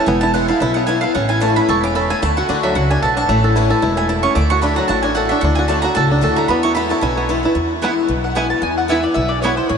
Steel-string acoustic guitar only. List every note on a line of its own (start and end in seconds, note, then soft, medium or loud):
0.06 0.58 E2 medium
0.34 0.48 E3 medium
0.34 0.48 G#3 medium
0.34 0.48 B3 medium
0.34 0.47 E4 medium
0.48 0.61 B3 medium
0.48 0.61 E4 medium
0.62 1.13 B2 medium
0.87 1.02 E3 medium
0.87 1.02 G#3 medium
0.87 1.02 B3 medium
0.87 1.01 E4 loud
1.03 1.15 B3 soft
1.03 1.14 E4 medium
1.15 1.66 A2 medium
1.40 1.55 E3 medium
1.40 1.56 A3 medium
1.40 1.56 C#4 loud
1.40 1.55 E4 medium
1.56 1.69 C#4 medium
1.56 1.68 E4 medium
1.69 1.94 B2 medium
1.95 2.21 C#3 medium
2.22 2.47 D3 medium
2.49 2.74 D3 medium
2.49 2.74 A3 medium
2.49 2.75 D4 medium
2.49 2.75 F#4 loud
2.75 3.01 C#3 medium
3.03 3.28 B2 medium
3.30 3.80 A2 medium
3.56 3.70 E3 medium
3.56 3.70 A3 medium
3.56 3.70 C#4 loud
3.56 3.69 E4 loud
3.70 3.83 C#4 medium
3.70 3.82 E4 medium
3.82 4.08 B2 medium
4.09 4.35 C#3 medium
4.36 4.60 D3 medium
4.62 4.76 D3 medium
4.62 4.76 A3 loud
4.62 4.77 D4 loud
4.62 4.75 F#4 medium
4.76 4.89 D4 medium
4.76 4.88 F#4 medium
4.89 5.40 A2 loud
5.15 5.29 D3 medium
5.15 5.30 A3 medium
5.15 5.30 D4 medium
5.15 5.28 F#4 medium
5.29 5.42 D4 soft
5.29 5.42 F#4 medium
5.41 5.67 D3 medium
5.68 5.83 D3 loud
5.68 5.83 A3 medium
5.68 5.82 D4 loud
5.68 5.81 F#4 loud
5.82 5.96 D4 medium
5.82 5.95 F#4 medium
5.95 6.47 A2 loud
6.21 6.48 D3 medium
6.21 6.48 A3 medium
6.21 6.48 D4 loud
6.21 6.48 F#4 loud
6.49 7.00 E2 medium
6.75 6.90 E3 medium
6.75 6.90 G#3 loud
6.75 6.89 B3 loud
6.75 6.88 E4 loud
6.89 7.03 B3 medium
6.89 7.02 E4 medium
7.01 7.53 B2 medium
7.29 7.43 E3 medium
7.29 7.43 G#3 medium
7.29 7.43 B3 medium
7.29 7.42 E4 medium
7.43 7.56 B3 soft
7.43 7.56 E4 medium
7.55 8.07 E2 medium
7.82 8.08 E3 medium
7.82 8.08 G#3 medium
7.82 8.09 B3 medium
7.82 8.09 E4 loud
8.08 8.60 B2 medium
8.35 8.62 E3 medium
8.35 8.62 G#3 medium
8.35 8.62 B3 medium
8.35 8.62 E4 loud
8.62 9.14 E2 medium
8.88 9.03 E3 medium
8.88 9.04 G#3 loud
8.88 9.03 B3 medium
8.88 9.01 E4 medium
9.03 9.17 B3 medium
9.03 9.16 E4 medium
9.15 9.68 B2 medium
9.43 9.57 E3 medium
9.43 9.58 G#3 medium
9.43 9.58 B3 medium
9.43 9.56 E4 medium
9.58 9.71 B3 soft
9.58 9.70 E4 medium
9.69 9.78 A2 medium